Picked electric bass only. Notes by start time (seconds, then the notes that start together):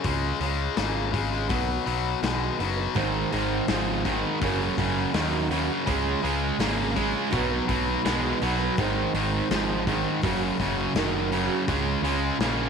0.05 C#2
0.40 C#2
0.77 G#1
1.50 B1
1.87 B1
2.22 B1
2.59 F#1
2.96 G#1
3.32 G#1
3.69 G#1
4.42 F#1
4.78 F#1
5.14 D#2
5.87 C#2
6.23 C#2
6.58 G#1
7.33 B1
7.68 B1
8.05 B1
8.42 B1
8.78 G#1
9.13 G#1
9.50 G#1
10.23 F#1
10.59 F#1
10.94 F#1
11.69 C#2
12.02 C#2
12.39 A#1